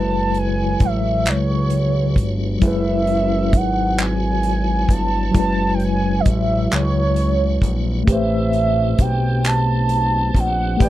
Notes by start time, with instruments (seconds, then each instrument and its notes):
Already playing: analog synth bass F#1, tine electric piano F#3 G#3 E4 B4, tonewheel organ F#3 E4 F#4 C#5, soft synth lead A5
0.34 soft synth lead G#5, closed hi-hat
0.80 analog synth bass A1, kick, closed hi-hat
0.85 soft synth lead E5
1.26 analog synth bass C#2, soft synth lead C#5, clap, closed hi-hat
1.70 closed hi-hat
2.16 analog synth bass G1, kick, closed hi-hat
2.59 analog synth bass F#1, tine electric piano F#3 E4, kick, closed hi-hat
2.64 tine electric piano G#3 B4, soft synth lead E5
3.07 closed hi-hat
3.53 analog synth bass G#1, soft synth lead F#5, kick, closed hi-hat
3.98 soft synth lead G#5, clap, closed hi-hat
4.43 closed hi-hat
4.89 analog synth bass G1, soft synth lead A5, kick, closed hi-hat
5.31 tine electric piano F#3 E4, kick, closed hi-hat
5.36 analog synth bass F#1, tine electric piano G#3 B4, soft synth lead A5
5.74 soft synth lead G5
5.80 soft synth lead G#5, closed hi-hat
6.20 soft synth lead D#5
6.25 analog synth bass A1, soft synth lead E5, kick, closed hi-hat
6.71 analog synth bass C#2, soft synth lead C#5, clap, closed hi-hat
7.16 closed hi-hat
7.62 analog synth bass A#1, kick, closed hi-hat
8.04 analog synth bass A1, tine electric piano A3 G4, tonewheel organ A3 C4 G4, kick, closed hi-hat
8.10 tine electric piano B4 C5, soft synth lead E5
8.53 closed hi-hat
8.98 analog synth bass B1, soft synth lead G5, kick, closed hi-hat
9.44 soft synth lead A5, clap, closed hi-hat
9.89 closed hi-hat
10.34 analog synth bass A#1, kick, closed hi-hat
10.39 soft synth lead F#5
10.77 tine electric piano A3 G4, kick, closed hi-hat
10.81 analog synth bass A1, tine electric piano B4 D5, soft synth lead G5